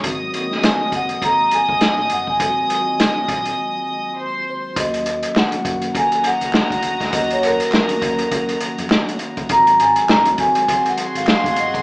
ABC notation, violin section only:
X:1
M:4/4
L:1/8
Q:"Swing 16ths" 1/4=102
K:Ebdor
V:1 name="Violin section"
[ee']8- | [ee']6 [cc']2 | z4 [Geb]4- | [Geb]8 |
z4 [GAc']4 |]